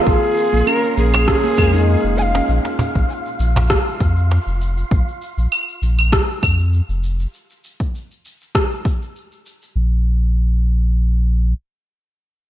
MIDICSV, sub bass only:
0, 0, Header, 1, 2, 480
1, 0, Start_track
1, 0, Key_signature, -5, "minor"
1, 0, Tempo, 606061
1, 49, Time_signature, 4, 2, 24, 8
1, 9895, End_track
2, 0, Start_track
2, 0, Title_t, "Sub bass"
2, 0, Program_c, 0, 38
2, 51, Note_on_c, 0, 34, 95
2, 139, Note_off_c, 0, 34, 0
2, 422, Note_on_c, 0, 34, 90
2, 497, Note_off_c, 0, 34, 0
2, 771, Note_on_c, 0, 34, 90
2, 1075, Note_off_c, 0, 34, 0
2, 1252, Note_on_c, 0, 41, 91
2, 1555, Note_off_c, 0, 41, 0
2, 1616, Note_on_c, 0, 29, 90
2, 1913, Note_off_c, 0, 29, 0
2, 1970, Note_on_c, 0, 34, 95
2, 2058, Note_off_c, 0, 34, 0
2, 2339, Note_on_c, 0, 34, 94
2, 2416, Note_off_c, 0, 34, 0
2, 2689, Note_on_c, 0, 34, 88
2, 2994, Note_off_c, 0, 34, 0
2, 3172, Note_on_c, 0, 41, 93
2, 3475, Note_off_c, 0, 41, 0
2, 3538, Note_on_c, 0, 29, 94
2, 3834, Note_off_c, 0, 29, 0
2, 3890, Note_on_c, 0, 34, 88
2, 3978, Note_off_c, 0, 34, 0
2, 4257, Note_on_c, 0, 34, 91
2, 4334, Note_off_c, 0, 34, 0
2, 4609, Note_on_c, 0, 34, 88
2, 4914, Note_off_c, 0, 34, 0
2, 5092, Note_on_c, 0, 41, 84
2, 5395, Note_off_c, 0, 41, 0
2, 5457, Note_on_c, 0, 29, 95
2, 5753, Note_off_c, 0, 29, 0
2, 7726, Note_on_c, 0, 34, 91
2, 9136, Note_off_c, 0, 34, 0
2, 9895, End_track
0, 0, End_of_file